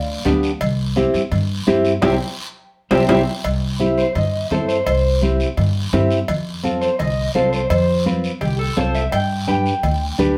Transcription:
Already playing: upright bass D2, clean electric guitar D5 F5
0.25 upright bass D2, nylon-string guitar B3 D4 G4, high conga, low conga, low timbale, short guiro
0.43 short guiro
0.61 upright bass C2, cowbell, high conga, low conga, long guiro
0.96 nylon-string guitar C4 E4 G4, high conga, short guiro
1.14 upright bass G2, short guiro
1.31 upright bass G2, cowbell, high conga, low conga, long guiro
1.67 upright bass G2, nylon-string guitar C4 E4 G4, high conga, short guiro
1.85 short guiro
2.02 upright bass C2, nylon-string guitar C4 E4 G4, clean electric guitar C5 E5 G5, high conga, high timbale, long guiro
2.91 upright bass C2, nylon-string guitar C4 E4 G4, clean electric guitar C5 E5 G5, high conga, high timbale, long guiro
3.08 upright bass C2, nylon-string guitar C4 E4 G4, clean electric guitar C5 E5 G5, high conga, high timbale, long guiro
3.44 upright bass C2, cowbell, long guiro
3.80 nylon-string guitar C4 E4 G4, high conga, short guiro
3.98 clean electric guitar C5, short guiro
4.15 upright bass G2, clean electric guitar D#5, cowbell, high conga, low conga, long guiro
4.51 upright bass G2, nylon-string guitar C4 E4 A4, clean electric guitar C5, high conga, low conga, short guiro
4.68 clean electric guitar C5, short guiro
4.86 upright bass C2, clean electric guitar C5, cowbell, high conga, long guiro
5.22 nylon-string guitar C4 E4 G4, high conga, short guiro
5.40 short guiro
5.57 upright bass G2, cowbell, high conga, low conga, long guiro
5.93 upright bass G2, nylon-string guitar C4 E4 G4, high conga, low conga, low timbale, short guiro
6.11 short guiro
6.28 upright bass F2, cowbell, high conga, low conga, long guiro
6.63 nylon-string guitar C4 F4 A4, high conga, short guiro
6.81 clean electric guitar C5, short guiro
6.99 upright bass C2, clean electric guitar D#5, cowbell, high conga, low conga, long guiro
7.35 upright bass C2, nylon-string guitar C4 F4 A4, clean electric guitar C5, high conga, short guiro
7.53 clean electric guitar C5, short guiro
7.70 upright bass F2, clean electric guitar C5, cowbell, high conga, low conga, long guiro
8.05 nylon-string guitar C4 F4 B4, high conga, short guiro
8.24 short guiro
8.41 upright bass C2, clean electric guitar G4, cowbell, high conga, low conga, long guiro
8.59 clean electric guitar A4
8.77 upright bass C2, nylon-string guitar C4 F4 A4, clean electric guitar C5, high conga, low timbale, short guiro
8.95 clean electric guitar E5, short guiro
9.12 upright bass G2, clean electric guitar G5, cowbell, high conga, long guiro
9.47 nylon-string guitar D4 G4 B4, clean electric guitar G5, high conga, short guiro
9.66 short guiro
9.83 upright bass D2, cowbell, high conga, low conga, long guiro
10.18 upright bass D2, nylon-string guitar D4 G4 B4, high conga, low conga, short guiro

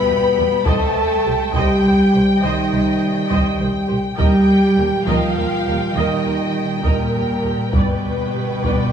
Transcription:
Already playing: trombone section B2 G3, cello section B3, french horn section B4, violin section G5 B5
0.07 double bass section E2, viola section B4
0.38 double bass section E2, viola section G4 B4
0.65 double bass section C2, trombone section C3 G3, cello section A3, french horn section A4, viola section C5 D#5, violin section G5 A5, taiko
1.25 double bass section C2, viola section G4 C5
1.53 double bass section C2, cello section G3, french horn section G4, viola section C5 D#5, violin section G5, taiko
1.84 double bass section C2, viola section C5
2.13 double bass section C2, viola section G4 C5
2.42 double bass section C2, cello section D#3, french horn section D#4, viola section C5 D#5, violin section D#5
2.72 double bass section C2, viola section C5
3.30 double bass section C2, viola section C5 D#5, taiko
3.59 double bass section C2, viola section C5
3.88 double bass section C2, viola section G4 C5
4.17 double bass section D#2, trombone section A#2 G3, cello section G3, french horn section G4, viola section A#4 D#5, violin section G5, taiko
4.77 double bass section D#2, viola section G4 A#4
5.06 double bass section D#2, cello section F3, french horn section F4, viola section A#4 D#5, violin section F5, taiko
5.36 double bass section D#2, viola section A#4
5.66 double bass section D#2, viola section G4 A#4
5.94 double bass section D#2, cello section D#3, french horn section D#4, viola section A#4 D#5, violin section D#5
6.24 double bass section D#2, viola section A#4
6.83 double bass section D#2, cello section A#2, french horn section A#3, violin section A#4, viola section A#4 D#5, taiko
7.14 double bass section D#2, viola section A#4
7.43 double bass section D#2, viola section G4 A#4
7.71 double bass section G2, cello section B2, trombone section D3 G3, french horn section B3, violin section B4 G5, viola section B4 D5, taiko
8.34 double bass section G2, viola section G4 B4
8.64 double bass section G2, viola section B4 D5, taiko

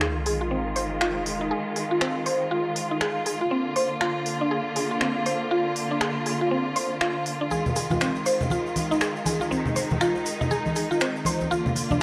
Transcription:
Already playing: string section D#3 G#3 F4, sub drop
0.01 synth arpeggio sound G#4, finger snap
0.26 synth arpeggio sound G#4, open hi-hat
0.41 synth arpeggio sound F4
0.51 synth arpeggio sound C4
0.76 synth arpeggio sound C5, open hi-hat
1.01 synth arpeggio sound F4, finger snap
1.26 open hi-hat
1.41 synth arpeggio sound D#4
1.51 synth arpeggio sound G#4
1.76 synth arpeggio sound G#4, open hi-hat
1.91 synth arpeggio sound F4
2.01 synth arpeggio sound C4, finger snap
2.26 synth arpeggio sound C5, open hi-hat
2.51 synth arpeggio sound F4
2.76 open hi-hat
2.91 synth arpeggio sound D#4
3.01 synth arpeggio sound G#4, finger snap
3.26 synth arpeggio sound G#4, open hi-hat
3.41 synth arpeggio sound F4
3.51 string section D3 A#3, synth arpeggio sound C4
3.76 synth arpeggio sound C5, open hi-hat
4.01 synth arpeggio sound F4, finger snap
4.26 open hi-hat
4.41 synth arpeggio sound D4
4.51 synth arpeggio sound G#4
4.76 synth arpeggio sound G#4, open hi-hat
4.91 synth arpeggio sound F4
5.01 synth arpeggio sound C4, finger snap
5.26 synth arpeggio sound C5, open hi-hat
5.51 synth arpeggio sound F4
5.76 open hi-hat
5.91 synth arpeggio sound D4
6.01 synth arpeggio sound G#4, finger snap
6.26 synth arpeggio sound G#4, open hi-hat
6.41 synth arpeggio sound F4
6.51 synth arpeggio sound C4
6.76 synth arpeggio sound C5, open hi-hat
7.01 synth arpeggio sound F4, finger snap
7.26 open hi-hat
7.41 synth arpeggio sound D4
7.51 string section D#3 G#3, synth arpeggio sound G#4, high conga, shaker
7.66 low conga, shaker
7.76 synth arpeggio sound G#4, open hi-hat, muted conga, shaker
7.90 synth arpeggio sound F4, high conga, low conga, shaker
8.01 synth arpeggio sound C4, finger snap, shaker
8.15 muted conga, shaker
8.26 synth arpeggio sound C5, open hi-hat, shaker
8.41 low conga, shaker
8.50 synth arpeggio sound F4, muted conga, high conga, shaker
8.66 shaker
8.76 open hi-hat, high conga, shaker
8.91 synth arpeggio sound D#4, muted conga, shaker
9.01 synth arpeggio sound G#4, finger snap, shaker
9.16 shaker
9.26 synth arpeggio sound G#4, open hi-hat, high conga, shaker
9.40 synth arpeggio sound F4, muted conga, shaker
9.51 synth arpeggio sound C4, string section D#4, high conga, shaker
9.66 low conga, shaker
9.76 synth arpeggio sound C5, open hi-hat, muted conga, shaker
9.90 high conga, low conga, shaker
10.01 synth arpeggio sound F4, finger snap, shaker
10.15 muted conga, shaker
10.26 open hi-hat, shaker
10.41 synth arpeggio sound D#4, low conga, shaker
10.51 synth arpeggio sound G#4, muted conga, shaker
10.66 high conga, shaker
10.76 synth arpeggio sound G#4, open hi-hat, shaker
10.91 synth arpeggio sound F4, muted conga, shaker
11.00 synth arpeggio sound C4, finger snap, shaker
11.16 shaker
11.25 synth arpeggio sound C5, open hi-hat, high conga, shaker
11.40 muted conga, high conga, shaker
11.51 string section D3 A#3 F4, synth arpeggio sound F4, high conga, shaker
11.66 low conga, shaker
11.75 open hi-hat, muted conga, shaker
11.91 synth arpeggio sound D4, high conga, low conga, shaker

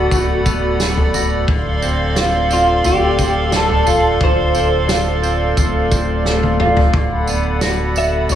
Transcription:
Already playing: clean electric guitar D3 A3 B3 F#4, analog synth pad A4 D5 F#5 B5
0.11 sub bass D1, clean electric guitar A3, kick, floor tom, tambourine
0.46 clean electric guitar B3, kick, tambourine
0.80 clean electric guitar A3, snare, tambourine
0.97 floor tom
1.14 clean electric guitar F#4, floor tom, tambourine
1.48 sub bass D1, clean electric guitar D3, analog synth pad A4 F5 C6, kick, floor tom
1.82 clean electric guitar C4, tambourine
2.16 clean electric guitar F4, snare, tambourine
2.50 clean electric guitar C4 F4, tambourine
2.84 sub bass D1, clean electric guitar A3 G4, floor tom, tambourine
3.18 clean electric guitar C4, kick, tambourine
3.52 clean electric guitar A3 A4, snare, tambourine
3.69 floor tom
3.86 clean electric guitar F4, floor tom, tambourine
4.21 sub bass D1, clean electric guitar D3 C5, kick, floor tom
4.55 clean electric guitar C4, tambourine
4.88 clean electric guitar F4, snare, tambourine
5.22 clean electric guitar C4, tambourine
5.57 sub bass D1, clean electric guitar A3, kick, floor tom, tambourine
5.91 clean electric guitar C4, kick, tambourine
6.26 clean electric guitar A3, snare
6.43 high tom
6.60 clean electric guitar F4, mid tom
6.77 floor tom
6.93 sub bass D1, clean electric guitar D3, analog synth pad A4 F#5 B5, kick, floor tom
7.27 clean electric guitar B3, tambourine
7.61 clean electric guitar F#4, snare, tambourine
7.96 clean electric guitar B3 E5, tambourine
8.29 sub bass D1, clean electric guitar A3 D5, floor tom, tambourine

